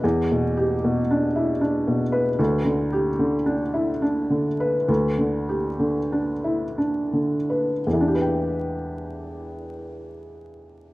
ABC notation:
X:1
M:3/4
L:1/8
Q:1/4=69
K:Em
V:1 name="Felt piano"
(3[E,,B] B,, G (3B,, D E (3D B,, B | (3D,, D, G (3D, D E (3D D, B | (3D,, D, G (3D, D E (3D D, B | [E,,E,DGBg]6 |]